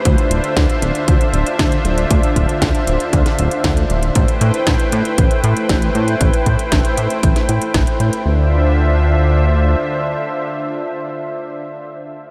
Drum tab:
HH |xxxxxxxxxxxxxxxx|xxxxxxxxxxxxxxxx|xxxxxxxxxxxxxxxx|xxxxxxxxxxxxxxxx|
SD |----o-------o---|----o----o--o---|----o-------o---|----o----o--o---|
BD |o---o---o---o---|o-o-o---o---o---|o---o---o---o---|o-o-o---o---o---|

HH |----------------|----------------|
SD |----------------|----------------|
BD |----------------|----------------|